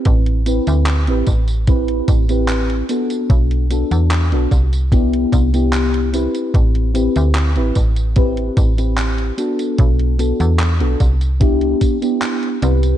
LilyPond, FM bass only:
\new Staff \with { instrumentName = "FM bass" } { \clef bass \time 4/4 \key a \dorian \tempo 4 = 74 a,,8. d,8 a,,16 a,,4 a,,4 r8 | b,,8. e,8 b,,16 c,4 c,4~ c,16 r16 | a,,8. d,8 a,,16 a,,4 a,,4 r8 | b,,8. e,8 b,,16 c,4 r4 c,8 | }